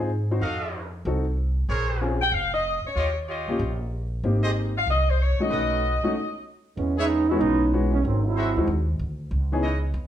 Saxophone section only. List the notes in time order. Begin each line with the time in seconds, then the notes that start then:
2.22 G5
2.33 F5
2.54 D#5
2.87 C#5
4.77 F5
4.90 D#5
5.10 C5
5.21 C#5
5.42 D#5